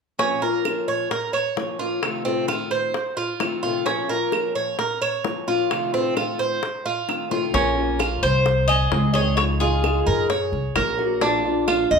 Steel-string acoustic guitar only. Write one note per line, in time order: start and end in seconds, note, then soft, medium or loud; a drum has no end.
0.18 0.41 A#2 medium
0.18 0.41 F3 medium
0.18 0.41 A#3 medium
0.18 0.41 C#4 medium
0.18 0.41 F4 medium
0.42 0.64 F3 soft
0.42 0.65 A#3 medium
0.42 0.64 C#4 medium
0.42 0.64 F4 medium
0.65 1.09 F3 soft
0.65 1.10 A#3 soft
0.65 1.10 C#4 soft
0.65 1.10 F4 medium
1.10 muted steel-string acoustic guitar stroke soft
1.56 1.78 F3 soft
1.56 1.79 A#3 soft
1.56 1.79 C#4 soft
1.56 1.78 F4 soft
1.79 2.02 F3 soft
1.79 2.02 A#3 medium
1.79 2.02 C#4 medium
1.79 2.02 F4 medium
2.02 2.25 F2 medium
2.02 2.25 C3 medium
2.02 2.25 D#3 medium
2.02 2.25 A3 medium
2.02 2.24 C4 medium
2.02 2.24 F4 medium
2.25 2.48 C3 medium
2.25 2.47 D#3 medium
2.25 2.48 A3 medium
2.25 2.48 C4 medium
2.25 2.47 F4 medium
2.48 2.93 D#3 soft
2.48 2.93 A3 soft
2.48 2.93 C4 soft
2.48 2.94 F4 soft
2.94 muted steel-string acoustic guitar stroke soft
3.40 3.62 D#3 soft
3.40 3.63 A3 soft
3.40 3.63 C4 soft
3.40 3.62 F4 medium
3.63 3.85 C3 soft
3.63 3.86 D#3 medium
3.63 3.86 A3 medium
3.63 3.86 C4 medium
3.63 3.85 F4 medium
3.85 4.08 A#2 medium
3.85 4.08 F3 medium
3.85 4.09 A#3 medium
3.85 4.08 C#4 medium
3.85 4.07 F4 medium
4.08 4.31 F3 medium
4.08 4.31 A#3 medium
4.08 4.31 C#4 medium
4.08 4.31 F4 medium
4.32 4.77 F3 soft
4.32 4.78 A#3 soft
4.32 4.78 C#4 soft
4.32 4.78 F4 medium
4.78 muted steel-string acoustic guitar stroke soft
5.24 5.46 F3 soft
5.24 5.47 A#3 soft
5.24 5.46 C#4 soft
5.24 5.46 F4 soft
5.47 5.70 F3 medium
5.47 5.70 A#3 soft
5.47 5.70 C#4 medium
5.47 5.69 F4 medium
5.70 5.92 F2 medium
5.70 5.92 C3 medium
5.70 5.93 D#3 medium
5.70 5.92 A3 medium
5.70 5.92 C4 medium
5.70 5.92 F4 medium
5.93 6.16 C3 soft
5.93 6.15 D#3 medium
5.93 6.16 A3 medium
5.93 6.15 C4 medium
5.93 6.15 F4 medium
6.16 6.61 D#3 soft
6.16 6.61 A3 soft
6.16 6.62 C4 soft
6.16 6.62 F4 medium
6.62 muted steel-string acoustic guitar stroke soft
7.08 7.30 D#3 soft
7.08 7.30 A3 soft
7.08 7.30 C4 soft
7.08 7.29 F4 soft
7.30 7.54 C3 medium
7.30 7.53 D#3 medium
7.30 7.53 A3 medium
7.30 7.53 C4 medium
7.30 7.53 F4 medium
7.54 7.76 F3 medium
7.54 7.76 A#3 medium
7.54 7.77 C#4 medium
7.54 7.76 F4 medium
7.77 7.99 A#3 medium
7.77 7.99 C#4 medium
7.77 7.99 F4 medium
7.99 8.45 F3 soft
7.99 8.45 A#3 soft
7.99 8.45 C#4 soft
7.99 8.46 F4 medium
8.45 muted steel-string acoustic guitar stroke medium
8.91 9.14 D#3 soft
8.91 9.14 G#3 soft
8.91 9.13 C4 medium
8.91 9.13 G#4 medium
9.14 9.37 D#3 medium
9.14 9.37 G#3 medium
9.14 9.37 C4 medium
9.14 9.37 G#4 medium
9.38 9.60 C#3 medium
9.38 9.60 F3 medium
9.38 9.60 G#3 medium
9.38 9.60 D#4 medium
9.38 9.59 F4 medium
9.61 9.82 F3 medium
9.61 9.83 G#3 medium
9.61 9.83 D#4 medium
9.61 9.83 F4 medium
9.83 10.29 F3 medium
9.83 10.29 G#3 medium
9.83 10.29 D#4 soft
9.83 10.30 F4 medium
10.29 muted steel-string acoustic guitar stroke medium
10.75 10.98 F#3 soft
10.75 10.98 A#3 medium
10.75 10.98 C#4 medium
10.75 10.97 F#4 medium
10.99 11.21 F#3 medium
10.99 11.21 A#3 medium
10.99 11.21 C#4 medium
10.99 11.21 F#4 medium
11.21 11.44 F3 medium
11.21 11.44 A#3 medium
11.21 11.44 D4 medium
11.21 11.44 F4 medium
11.45 11.67 A#3 soft
11.45 11.67 D4 medium
11.45 11.67 F4 medium
11.68 11.99 F3 soft
11.68 11.99 A#3 soft
11.68 11.99 D4 medium
11.68 11.99 F4 soft